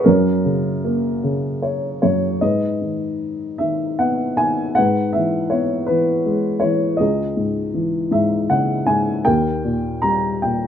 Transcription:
0.04 F#2 C#4 A#4
0.45 C#3
0.85 A#3
1.23 C#3
1.62 C#5
2.02 F#2 C#5
2.41 G#2 B4 D#5
2.82 D#3
3.58 D#3 E5
3.99 B3 F#5
4.37 D#3 G#5
4.75 G#2 B4 F#5
5.13 E3 E5
5.50 B3 C#5
5.87 E3 B4
6.26 G#3
6.60 E3 C#5
6.97 C#2 G#4 D#5
7.37 G#2
7.74 E3
8.11 G#2 E5
8.50 C#3 F#5
8.86 G#2 G#5
9.25 D#2 A#4 G5
9.64 A#2
10.02 G3 A#5
10.42 A#2 G5

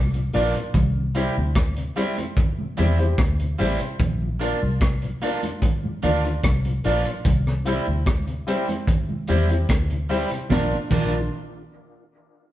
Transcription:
Already playing: C2
0.14 A#2 F3, closed hi-hat
0.33 A#1 A#3 D4 F4 A#4 D5, open hi-hat
0.55 A#2 F3, closed hi-hat
0.74 C2, kick, closed hi-hat, low conga
0.96 C3
1.15 G3 C4 E4 G4 C5, closed hi-hat
1.36 D2 C3
1.55 kick, cross-stick, closed hi-hat, high conga
1.76 C3, closed hi-hat
1.96 G3 C4 E4 G4 C5, closed hi-hat
2.17 C4 E4, closed hi-hat, high conga
2.37 kick, closed hi-hat, low conga
2.58 C3, high conga
2.77 E2 G3 C4 E4 G4 C5, closed hi-hat, low conga
2.99 C4 E4 G4 C5, closed hi-hat
3.18 D2, kick, cross-stick, closed hi-hat, high conga
3.39 C3, closed hi-hat
3.59 A1 G3 C4 E4 G4 C5, open hi-hat
3.80 C3, closed hi-hat
3.99 A#1, kick, closed hi-hat, low conga
4.22 A#2 F3
4.40 A#3 D4 F4 A#4 D5, closed hi-hat
4.62 C2 A#2 F3
4.81 kick, cross-stick, closed hi-hat, high conga
5.02 A#2 F3, closed hi-hat
5.21 A#3 D4 F4 A#4 D5, closed hi-hat
5.43 D4 F4, closed hi-hat, high conga
5.62 kick, closed hi-hat, low conga
5.84 A#2 F3, high conga
6.02 D2 A#3 D4 F4 A#4 D5, closed hi-hat, low conga
6.24 D4 F4, muted clean electric guitar stroke, closed hi-hat
6.43 C2, kick, cross-stick, closed hi-hat, high conga
6.65 A#2 F3, closed hi-hat
6.84 A#1 A#3 D4 F4 A#4 D5, open hi-hat
7.06 A#2 F3, closed hi-hat
7.25 C2, kick, closed hi-hat, low conga
7.47 C3, cross-stick
7.65 G3 C4 E4 G4 C5, closed hi-hat
7.87 D2 C3
8.06 kick, cross-stick, closed hi-hat, high conga
8.27 C3, closed hi-hat
8.47 G3 C4 E4 G4 C5, closed hi-hat
8.68 C4 E4, closed hi-hat, high conga
8.87 kick, closed hi-hat, low conga
9.09 C3, high conga
9.27 E2 G3 C4 E4 G4 C5, closed hi-hat, low conga
9.49 C4 E4 G4 C5, closed hi-hat
9.69 D2, kick, cross-stick, closed hi-hat, high conga
9.90 C3, closed hi-hat
10.09 G3 C4 E4 G4 C5, open hi-hat
10.31 C3, closed hi-hat
10.49 A#1 A#3 D4 F4 A#4 D5, kick, snare, low conga
10.90 A#1 A#3 D4 F4 A#4 D5, kick, crash, low conga

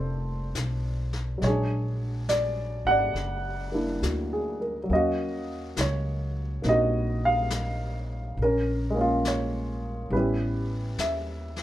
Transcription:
Already playing: F1 F3 A3 A#3 C4 D4 A4 C5 D5
0.55 B1, snare, hi-hat pedal
1.13 snare
1.38 A#1 F#3 G#3, brush sweep, snare
1.44 G#4 C#5
1.49 D4
2.29 D5, snare, hi-hat pedal
2.85 G#1 F#5
2.91 D5
3.14 F#1, brush sweep, snare
3.72 A#3 D4 E4
4.02 D2 F#4, snare, hi-hat pedal
4.33 G#4
4.61 A#4
4.84 F#3
4.88 D#2 A#3 C#4, brush sweep
4.93 F#4 D#5 F5
5.77 C#2, snare, hi-hat pedal
5.81 C#5
6.62 A#1 A#3 C4 D#4, brush sweep, snare
6.69 F#4 D#5
7.25 F5
7.50 snare, hi-hat pedal
8.37 A#1, brush sweep
8.42 C#4 A#4
8.90 G#3
8.94 A#3 C#4
9.01 F4
9.25 C#5, snare, hi-hat pedal
10.10 A1 G3 B3 B4, brush sweep
10.14 C#4 E4 G4
10.98 D#2 E5, snare, hi-hat pedal
11.56 snare

